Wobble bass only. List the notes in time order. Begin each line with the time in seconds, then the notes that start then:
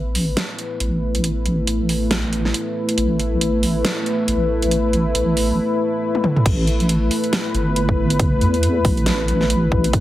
Already playing: A1
0.80 A1
1.67 A1
2.98 A1
4.28 A1
5.15 A1
6.46 A1
7.54 G1
8.41 E2
8.85 A1
9.72 A1
9.94 A1